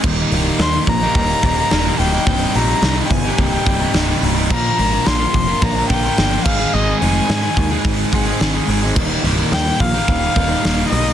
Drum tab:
CC |x-------|--------|x------x|--------|
HH |-ooooooo|oooooooo|-oooooo-|-ooooooo|
SD |--o---o-|--o---o-|--o---o-|--o---o-|
BD |o--ooo--|o--ooo--|o--ooo-o|---ooo--|

CC |x-------|
HH |-ooooooo|
SD |--o---o-|
BD |o--ooo--|